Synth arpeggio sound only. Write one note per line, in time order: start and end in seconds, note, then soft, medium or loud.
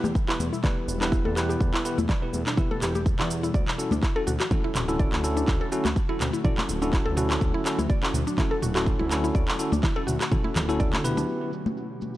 0.04 0.15 G4 medium
0.28 0.38 E4 loud
0.53 0.59 E4 medium
0.64 0.76 D5 medium
1.01 1.11 D4 medium
1.12 1.24 E4 medium
1.25 1.31 A4 loud
1.36 1.48 G4 medium
1.49 1.60 G4 medium
1.74 1.84 E4 loud
1.98 2.04 E4 medium
2.09 2.21 D5 medium
2.47 2.56 D4 medium
2.58 2.69 E4 medium
2.71 2.77 A4 loud
2.82 2.94 G4 medium
2.95 3.06 G4 medium
3.19 3.29 E4 loud
3.43 3.49 E4 medium
3.54 3.66 D5 medium
3.92 4.02 D4 medium
4.03 4.15 E4 medium
4.16 4.22 A4 loud
4.27 4.39 F#4 medium
4.40 4.50 F#4 medium
4.64 4.74 E4 loud
4.88 4.94 E4 medium
5.00 5.11 D5 medium
5.37 5.47 D4 medium
5.48 5.60 E4 medium
5.61 5.67 A4 loud
5.72 5.84 F#4 medium
5.85 5.96 F#4 medium
6.09 6.19 E4 loud
6.33 6.39 E4 medium
6.44 6.56 D5 medium
6.82 6.92 D4 medium
6.93 7.05 E4 medium
7.06 7.12 A4 loud
7.17 7.29 F#4 medium
7.30 7.41 F#4 medium
7.54 7.64 E4 loud
7.79 7.85 E4 medium
7.90 8.01 D5 medium
8.27 8.37 D4 medium
8.38 8.50 E4 medium
8.51 8.57 A4 loud
8.62 8.74 F#4 medium
8.75 8.86 F#4 medium
8.99 9.09 E4 loud
9.24 9.30 E4 medium
9.35 9.47 D5 medium
9.72 9.82 D4 medium
9.83 9.95 E4 medium
9.96 10.02 A4 loud
10.07 10.19 F#4 medium
10.20 10.31 F#4 medium
10.44 10.55 E4 loud
10.69 10.75 E4 medium
10.80 10.92 D5 medium
11.17 11.27 D4 medium